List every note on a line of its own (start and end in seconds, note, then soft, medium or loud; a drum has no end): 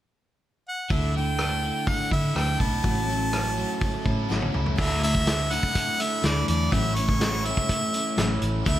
0.68 0.93 F#5 medium
0.90 1.70 D2 medium
0.90 1.14 D3 medium
0.90 1.15 A3 medium
0.90 1.15 D4 medium
0.90 1.13 E4 medium
0.90 1.15 E5 medium
0.90 kick medium
0.90 open hi-hat soft
1.14 1.62 D3 soft
1.14 1.40 A3 soft
1.14 1.40 D4 soft
1.14 1.39 E4 soft
1.14 1.90 G5 medium
1.38 2.12 D3 soft
1.38 2.14 A3 medium
1.38 2.11 D4 medium
1.38 2.11 E4 medium
1.38 cross-stick medium
1.38 open hi-hat soft
1.63 2.84 D3 medium
1.87 3.81 A3 medium
1.87 2.12 F#5 medium
1.87 kick medium
1.87 open hi-hat soft
2.11 2.31 D3 medium
2.11 2.35 A3 soft
2.11 2.36 D4 soft
2.11 2.36 E4 soft
2.11 2.38 E5 medium
2.11 kick medium
2.35 2.55 D2 medium
2.35 2.60 D3 soft
2.35 2.60 A3 medium
2.35 2.60 D4 medium
2.35 2.59 E4 soft
2.35 2.61 G5 medium
2.35 cross-stick medium
2.35 open hi-hat soft
2.59 2.80 B1 medium
2.59 2.83 A3 soft
2.59 2.84 D4 soft
2.59 2.83 E4 soft
2.59 4.54 A5 loud
2.59 kick medium
2.82 3.63 A1 medium
2.82 3.08 A2 medium
2.82 3.08 F#3 medium
2.82 3.08 A3 medium
2.82 3.07 C#4 medium
2.82 3.06 E4 medium
2.82 kick medium
2.82 open hi-hat soft
3.07 3.56 F#3 medium
3.07 3.30 A3 soft
3.07 3.31 C#4 soft
3.07 3.32 E4 soft
3.31 4.04 F#3 soft
3.31 4.05 A3 medium
3.31 4.04 C#4 medium
3.31 4.03 E4 medium
3.31 cross-stick medium
3.31 open hi-hat soft
3.58 4.77 F#3 medium
3.81 4.78 A3 medium
3.81 kick medium
3.81 open hi-hat soft
4.04 4.25 A2 medium
4.04 4.28 A3 soft
4.04 4.29 C#4 soft
4.04 4.29 E4 soft
4.04 kick medium
4.29 4.49 A1 medium
4.29 4.53 F#3 medium
4.29 4.54 A3 medium
4.29 4.53 C#4 medium
4.29 4.51 E4 medium
4.29 snare soft
4.42 high tom soft
4.52 4.74 C#2 medium
4.52 4.76 A3 soft
4.52 4.77 C#4 soft
4.52 4.77 E4 soft
4.52 mid tom medium
4.66 floor tom medium
4.76 5.57 D2 medium
4.76 5.01 D3 medium
4.76 5.02 A3 medium
4.76 5.02 D4 medium
4.76 5.00 E4 medium
4.76 5.00 E5 medium
4.76 kick loud
4.76 crash medium
5.01 5.25 A3 soft
5.01 5.27 D4 soft
5.01 5.26 E4 medium
5.01 5.54 E5 loud
5.01 closed hi-hat medium
5.15 kick medium
5.26 5.50 D3 medium
5.26 5.51 A3 medium
5.26 5.50 D4 medium
5.26 5.49 E4 medium
5.26 snare loud
5.26 closed hi-hat medium
5.50 6.71 D3 medium
5.50 6.00 A3 soft
5.50 5.99 D4 soft
5.50 5.97 E4 medium
5.50 6.03 F#5 loud
5.50 closed hi-hat medium
5.63 kick medium
5.75 kick medium
5.75 closed hi-hat medium
5.98 6.21 A3 soft
5.98 6.22 D4 soft
5.98 6.23 E4 soft
5.98 6.27 E5 loud
5.98 closed hi-hat medium
6.22 6.43 D2 medium
6.22 6.71 D3 medium
6.22 6.71 A3 medium
6.22 6.72 D4 medium
6.22 6.72 E4 medium
6.22 6.48 D5 medium
6.22 snare medium
6.22 closed hi-hat medium
6.48 6.68 E2 medium
6.48 6.74 D5 medium
6.48 closed hi-hat medium
6.71 7.51 A1 loud
6.71 6.96 A2 medium
6.71 7.46 E3 loud
6.71 6.96 F#3 medium
6.71 6.96 A3 medium
6.71 6.95 C#4 medium
6.71 6.94 E4 medium
6.71 6.97 E5 medium
6.71 kick loud
6.71 closed hi-hat medium
6.95 7.19 A3 soft
6.95 7.20 C#4 soft
6.95 7.20 E4 soft
6.95 7.47 C#5 medium
6.95 closed hi-hat medium
7.09 kick medium
7.19 7.44 F#3 soft
7.19 7.44 A3 medium
7.19 7.45 C#4 soft
7.19 7.43 E4 medium
7.19 snare medium
7.19 closed hi-hat medium
7.45 8.65 A2 medium
7.45 8.64 E3 medium
7.45 7.95 A3 soft
7.45 7.93 C#4 soft
7.45 7.92 E4 soft
7.45 8.42 E5 medium
7.45 closed hi-hat soft
7.57 kick medium
7.69 kick medium
7.69 closed hi-hat medium
7.93 8.17 A3 soft
7.93 8.17 C#4 soft
7.93 8.17 E4 soft
7.93 closed hi-hat medium
8.16 8.37 A1 medium
8.16 8.65 F#3 medium
8.16 8.66 A3 medium
8.16 8.66 C#4 medium
8.16 8.66 E4 medium
8.16 snare medium
8.16 closed hi-hat medium
8.42 8.61 A1 medium
8.42 closed hi-hat soft
8.66 8.79 D2 loud
8.66 8.79 D3 medium
8.66 8.79 A3 medium
8.66 8.79 D4 medium
8.66 8.79 E4 medium
8.66 8.79 E5 medium
8.66 kick medium
8.66 closed hi-hat medium